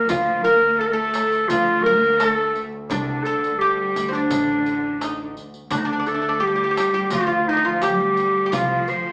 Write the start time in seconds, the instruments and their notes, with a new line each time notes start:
Already playing: double bass D2, clarinet A#4
0.08 upright bass D2, cello section F3, clarinet F4, oud F4, riq, darbuka dum
0.12 double bass D2
0.43 cello section A#3, clarinet A#4, oud A#4, riq, darbuka ka
0.78 cello section A3, clarinet A4, oud A4
0.87 clarinet A#4
0.92 cello section A3, clarinet A4, oud A4
1.14 riq, darbuka tek
1.32 riq, darbuka ka
1.48 upright bass D2, cello section F3, clarinet F4, oud F4, riq, darbuka dum
1.83 cello section A#3, clarinet A#4, oud A#4, darbuka ka
2.17 cello section A3, clarinet A4, oud A4, riq, darbuka tek
2.55 riq, darbuka ka
2.73 darbuka ka
2.88 upright bass C2, cello section D3, clarinet D4, oud D4, riq, darbuka dum
3.24 clarinet A4, oud A4, riq, darbuka ka
3.43 riq, darbuka ka
3.58 cello section G3, clarinet G4, oud G4
3.96 upright bass D2, riq
4.09 oud C4, clarinet D4
4.13 cello section D3, oud D4, riq, darbuka ka
4.30 upright bass A1, riq, darbuka dum
4.66 riq
5.01 oud D#4, riq, darbuka tek
5.37 riq, darbuka ka
5.54 riq
5.71 upright bass D2, double bass D2, cello section D3, oud D4, clarinet D4, riq, darbuka dum
5.78 clarinet D#4
5.85 cello section D3, oud D4, clarinet D4
5.93 oud D4
5.99 oud D4
6.06 cello section A3, oud D4, clarinet A4, riq, darbuka ka
6.14 oud D4
6.22 oud D4
6.29 oud D4
6.40 cello section G3, oud G4, clarinet G4
6.47 oud G4
6.56 oud G4
6.64 oud G4
6.71 oud G4
6.77 oud G4, riq, darbuka tek
6.94 oud G4, riq, darbuka ka
7.10 upright bass D2, cello section F3, clarinet F4, oud F4, riq, darbuka dum
7.21 oud G4
7.27 oud F4
7.48 cello section D#3, clarinet D#4, oud D#4, darbuka ka
7.53 oud D4 D#4
7.65 cello section F3, oud F4, clarinet F4
7.82 cello section G3, clarinet G4, oud G4, riq, darbuka tek
8.17 riq
8.35 darbuka ka
8.46 oud G4
8.52 upright bass C2, cello section F3, oud F4, clarinet F4, riq, darbuka dum
8.88 clarinet C5, riq, darbuka ka